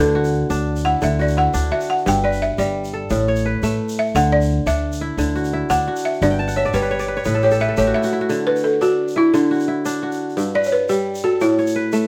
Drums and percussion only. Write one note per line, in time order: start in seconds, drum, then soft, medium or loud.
0.24 shaker medium
0.33 shaker soft
0.50 shaker medium
0.76 shaker medium
1.02 shaker medium
1.20 shaker soft
1.28 shaker medium
1.54 shaker medium
1.81 shaker medium
1.98 shaker soft
2.07 shaker medium
2.32 shaker soft
2.58 shaker medium
2.84 shaker medium
3.10 shaker medium
3.28 shaker soft
3.36 shaker medium
3.63 shaker medium
3.89 shaker medium
4.06 shaker soft
4.15 shaker medium
4.41 shaker medium
4.50 shaker soft
4.67 shaker medium
4.92 shaker medium
5.18 shaker medium
5.36 shaker soft
5.44 shaker medium
5.70 shaker medium
5.96 shaker medium
6.13 shaker soft
6.22 shaker medium
6.31 shaker soft
6.40 shaker soft
6.48 shaker medium
6.56 shaker soft
6.65 shaker soft
6.73 shaker medium
6.83 shaker soft
6.91 shaker soft
6.99 shaker medium
7.16 shaker soft
7.24 shaker medium
7.42 shaker soft
7.51 shaker medium
7.60 shaker soft
7.77 shaker medium
8.03 shaker medium
8.30 shaker medium
8.56 shaker soft
8.64 shaker soft
8.82 shaker medium
9.08 shaker soft
9.34 shaker medium
9.52 shaker soft
9.60 shaker soft
9.86 shaker medium
10.12 shaker medium
10.29 shaker soft
10.38 shaker medium
10.64 shaker soft
10.72 shaker soft
10.89 shaker medium
11.15 shaker soft
11.41 shaker medium
11.58 shaker soft
11.67 shaker medium
11.92 shaker medium